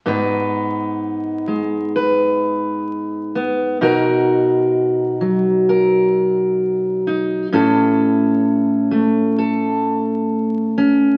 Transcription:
\new Staff \with { instrumentName = "Steel-string acoustic guitar" } { \time 4/4 \key gis \minor \tempo 4 = 64 << { <b dis' b'>2 b'4. b8 | <dis' fis' ais'>2 ais'4. dis'8 | <cis' e' a'>2 a'4. cis'8 | } \\ { gis,4. gis2~ gis8 | b,4. fis2~ fis8 | a,4. a2~ a8 | } >> }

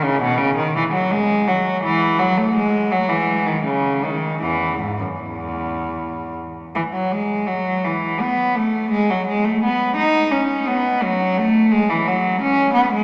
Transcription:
\new Staff \with { instrumentName = "Cello" } { \clef bass \time 3/4 \key e \major \tempo 4 = 84 cis16 b,16 cis16 dis16 e16 fis16 gis8 fis8 e8 | fis16 a16 gis8 fis16 e8 dis16 cis8 dis8 | <e, e>8 gis,16 fis,16 e,4. r8 | e16 fis16 gis8 fis8 e8 b8 a8 |
gis16 fis16 gis16 a16 b8 dis'8 cis'8 b8 | fis8 a8 gis16 e16 fis8 cis'8 b16 gis16 | }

